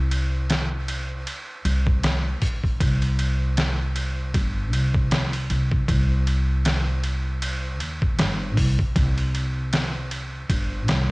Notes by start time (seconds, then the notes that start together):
Already playing: C2
0.11 ride
0.50 snare, ride
0.88 ride
1.27 ride
1.65 C2, ride
1.87 kick
2.03 snare, ride
2.42 G1, kick, open hi-hat
2.64 kick
2.81 C2, kick, ride
3.02 ride
3.19 ride
3.57 snare, ride
3.96 ride
4.34 G1, kick, ride
4.73 C2, ride
4.94 kick
5.11 snare, ride
5.33 ride
5.50 C2, ride
5.72 kick
5.88 C2, kick, ride
6.27 ride
6.65 snare, ride
7.04 ride
7.42 ride
7.80 D#2, ride
8.02 kick
8.19 G1, snare, ride
8.57 C2, kick, open hi-hat
8.79 kick
8.96 C2, kick, ride
9.18 ride
9.35 ride
9.73 snare, ride
10.11 ride
10.50 G1, kick, ride
10.88 C2, snare, ride